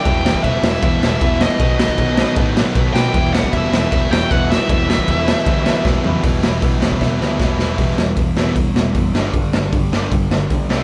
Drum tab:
CC |x---x---x---x---|x---x---x---x---|x---x---x---x---|x---x---x-------|
HH |----------------|----------------|----------------|----------------|
SD |--o---o---o---o-|--o---o---o---o-|--o---o---o---o-|--o---o---o-o---|
FT |----------------|----------------|----------------|--------------o-|
BD |o--oo---o---o---|o--oo---o---o---|o--oo---o---o---|o--oo---o---o---|

CC |----------------|----------------|----------------|
HH |o---o-----------|o---o---o---o---|o---o---o---o---|
SD |--o---o-o-o-o-o-|--o---o---o---o-|--o---o---o---o-|
FT |----------------|----------------|----------------|
BD |o---o--oo---o---|o---o---o---o---|o---o---o---o---|